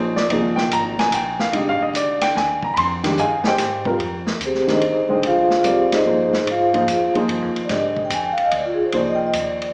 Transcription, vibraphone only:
4.45 C4 G4 G#4 C5
4.71 D#4 G#4 C5 D#5
5.26 F4 G#4 C5 F5
5.67 C4 G4 G#4 C5
5.93 D#4 G#4 C5 D#5
6.51 F4 G#4 C5 F5
7.65 D5
7.73 D#5
8.05 G5
8.14 G#5
8.25 G5
8.32 F5
8.45 D#5
8.54 D5
8.66 F4
8.74 G#4
8.85 C5
8.96 D5
9.07 D#5
9.15 G5
9.26 D#5
9.38 D5

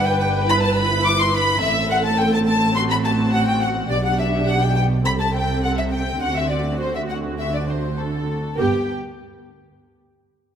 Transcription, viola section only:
Already playing: D4 B4
0.49 E4
1.62 C4 A4
2.75 F#4
3.90 D4 G4
5.05 C4 A4
6.21 F#4
8.58 B3 G4

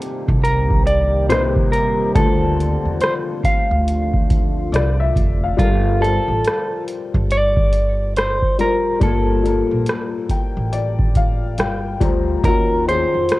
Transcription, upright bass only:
0.28 C2
2.15 D2
2.85 E2
3.71 D2
4.72 C2
5.16 F1
5.59 G1
6.28 A1
7.14 G1
9.01 G1
9.71 A#1
10.57 A1
11.58 G1
12.01 D2
12.44 D#2
13.14 F2

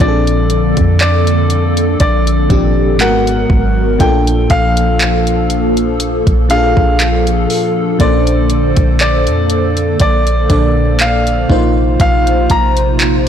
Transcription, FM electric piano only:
0.00 A#2 F3 C4 D4 G#4
0.08 A4
2.49 A#2 F3 C4 D4 G4
2.99 G#2 G#3 A#3 F#4 A#4
3.07 B3
3.99 A#2 A#3 D4 F4 A4
6.49 A#2 A#3 D4 F4 G#4
6.58 A4
7.99 A#2 A#3 C#4 A4 C5
8.06 D4
10.49 A#2 A#3 D4 A4 D5
11.49 A#2 A#3 D#4 F4 C5

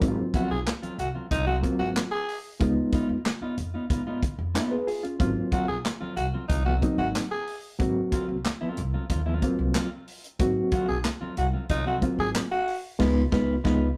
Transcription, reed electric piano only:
0.00 F#3 A#3 C4 D#4
0.08 F4
1.63 F#3 A#3 C4 F4
2.60 G#3 B3 D#4 F4
4.71 G#4 B4
4.87 F4 G#4
5.03 C#4 F4
5.19 F#3 A#3 C4 F4
6.82 F#3 A#3 C4 D#4
7.79 F#3 A#3 C4 F#4
9.42 F#3 A#3 C4 F4
10.39 F#3 A#3 C4 F#4
12.01 F#3 A#3 C4 F4
12.99 G#3 B3 D#4 F4
13.32 G#3 B3 D#4 F4
13.64 G#3 B3 D#4 F4

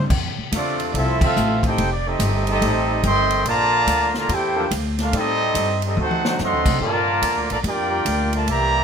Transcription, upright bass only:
0.10 F2
0.38 muted upright bass stroke
0.52 E2
0.94 C2
1.36 A1
1.78 F1
2.19 G1
2.61 A1
3.03 G1
3.45 A#1
3.87 D2
4.29 E2
4.71 D2
5.13 A2
5.55 G2
5.97 D2
6.39 F#2
6.53 D2
6.67 C2
6.80 G2
7.22 E2
7.37 D2
7.51 A#1
7.63 F2
8.05 D2
8.47 C2

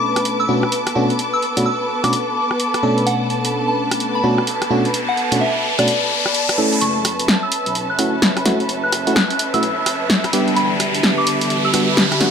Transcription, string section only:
Already playing: B3 E4 A4 A5 D6
6.82 C#4
7.19 E5
10.57 D3
10.75 G4

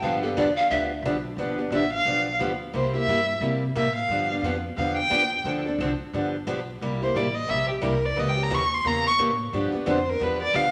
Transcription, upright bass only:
0.02 G2
0.37 E2
0.70 D2
1.02 B1
1.36 G1
1.70 A1
2.05 B1
2.40 D2
2.74 C2
3.07 G2
3.41 C3
3.75 A2
4.08 G2
4.42 F2
4.77 E2
5.10 D#2
5.44 D2
5.78 C2
6.00 muted upright bass stroke
6.13 G1
6.47 B1
6.81 C2
7.14 A1
7.49 A#1
7.83 C2
8.17 C#2
8.51 D#2
8.84 E2
9.19 A2
9.53 G2
9.74 muted upright bass stroke
9.87 F2
10.20 E2
10.53 D2

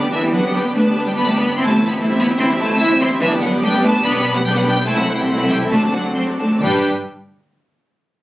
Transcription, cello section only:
0.11 E3
0.33 F#3
0.54 G3
0.75 A3
1.06 G3
1.16 B3
1.27 A3
1.37 B3
1.58 C4
1.68 A3
1.89 B3
1.99 A3
2.19 B3
2.40 C4
2.60 A3
2.81 E4
3.01 C4
3.21 E3
3.42 F#3
3.63 G3
3.83 A3
4.03 B3
4.34 F#3
4.45 G3
4.55 F#3
4.66 G3
4.86 A3
4.97 F#3
5.18 G3
5.30 F#3
5.50 G3
5.72 A3
5.93 F#3
6.15 C4
6.39 A3
6.60 G3

